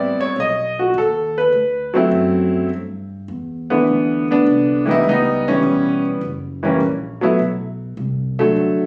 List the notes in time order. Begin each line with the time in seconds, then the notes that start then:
Already playing: A1 G3 B3 C4 E4 D5
0.19 C#5, muted upright bass stroke
0.36 B1 D#5
0.79 F#4
0.94 D#2
0.98 A4
1.38 B4
1.52 D2
1.94 F#3 A3 C4 E4
2.11 F#2
2.69 G2
3.28 E2
3.70 D3 E3 B3
3.87 D2
4.31 B3 D4
4.46 C2
4.86 E3 G3 B3 D#4
4.91 E4
5.03 C#2
5.08 G3 B3 D#4
5.48 E3 G3 C#4
5.63 E1
6.21 F#1
6.63 E3 G3 A#3 C#4
6.80 A#1
7.21 F#3 A3 B3 E4
7.39 B1
7.97 C2
8.39 D3 F#3 A3
8.56 D2